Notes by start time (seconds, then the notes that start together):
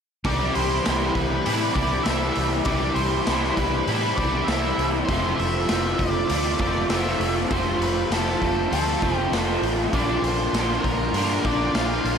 0.24 C2 C3 E3 G3 C4 E4 D5, kick, open hi-hat
0.55 C2 C5, open hi-hat
0.84 C2 E3 G3 C4 E4, snare, open hi-hat
1.15 C2 B4, kick, open hi-hat
1.45 A2 C3 E3 G3 C4 E4, open hi-hat
1.74 C2 G3 C4 E4 D5, kick, open hi-hat
2.03 C2 E3 G3 C4 E4 E5, snare, open hi-hat
2.35 C2, open hi-hat
2.65 C2 C3 E3 G3 C4 E4 D5, kick, open hi-hat
2.95 C2 C5, open hi-hat
3.26 C2 E3 G3 C4 E4, snare, open hi-hat
3.43 snare
3.56 C2 B4, kick, open hi-hat
3.87 A2 C3 E3 G3 C4 E4, open hi-hat
4.16 C2 G3 C4 E4 D5, kick, open hi-hat
4.45 C2 E3 G3 E5, snare, open hi-hat
4.49 C4 E4
4.78 C2, open hi-hat
5.05 F1 C5, kick, open hi-hat
5.09 F2 C3 F3 A3 C4 F4
5.36 F1 E5, open hi-hat
5.69 F1 F3 A3 C4 F4, snare, open hi-hat
5.98 F1 D5, kick, open hi-hat
6.28 D2 F2 C3 F3 A3 C4 F4 D5, open hi-hat
6.59 F1 F3 A3 C4 F4, kick, open hi-hat
6.90 F1 F3 A3 C4 F4 E5, snare, open hi-hat
7.20 F1, open hi-hat
7.50 F1 F2 C3 F3 A3 C4 F4 C5, kick, open hi-hat
7.79 F1 B4, open hi-hat
8.10 F1 F3 A3 C4 F4 A4, snare, open hi-hat
8.27 snare
8.42 F1, kick, open hi-hat
8.71 D2 F2 C3 F3 A3 C4 F4 A4, open hi-hat
9.02 F1 F3 A3 C4 F4, kick, open hi-hat
9.16 G4
9.32 F1 F3 A3 C4 F4, snare, open hi-hat
9.62 A1, open hi-hat
9.93 A#1 A#2 D3 A#3 D4 F4 D5, kick, open hi-hat
10.22 A#1 C5, open hi-hat
10.53 A#1 D3 A#3 D4 F4, snare, open hi-hat
10.70 snare
10.84 A#1 A#4, kick, open hi-hat
11.12 G2 A#2 D3 A#3, open hi-hat
11.17 D4 F4
11.45 A#1 A#3 D4 F4 D5, kick, open hi-hat
11.74 A#1 D3 A#3 D4 F4 F5, snare, open hi-hat
12.04 A#1, open hi-hat